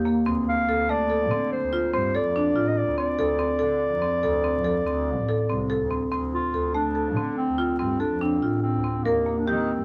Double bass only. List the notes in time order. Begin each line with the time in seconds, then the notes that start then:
Already playing: D#2
0.27 D2
0.68 D2
1.00 D2
1.30 D3
1.62 D2
1.94 G2
2.25 F2
2.56 A1
2.87 D2
3.19 D2
3.61 D3
3.93 F2
4.24 D2
4.56 F2
4.87 D2
5.19 A1
5.51 C2
5.82 D2
6.12 D2
6.53 D2
6.85 D2
7.16 D3
7.48 D2
7.80 G2
8.11 F2
8.42 A1
8.74 D2
9.05 D#2
9.47 D#3
9.79 G2